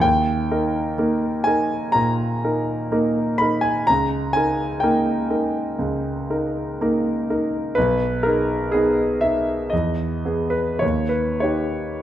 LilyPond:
\new Staff \with { instrumentName = "Grand piano" } { \time 4/4 \key dis \phrygian \tempo 4 = 62 << { g''4. gis''8 ais''4. b''16 gis''16 | ais''8 gis''8 g''4. r4. | b'8 ais'8 gis'8 e''8 dis''8. b'16 cis''16 b'16 cis''8 | } \\ { dis,8 <dis' ais'>8 <ais dis' ais'>8 <dis' ais'>8 ais,8 <dis' ais'>8 <ais dis' ais'>8 <dis' ais'>8 | cis,8 <dis' ais'>8 <ais dis' ais'>8 <dis' ais'>8 cis,8 <dis' ais'>8 <ais dis' ais'>8 <dis' ais'>8 | b,,8 <dis' gis'>8 <b dis'>8 <dis' gis'>8 e,8 <b gis'>8 dis,8 <dis' g'>8 | } >> }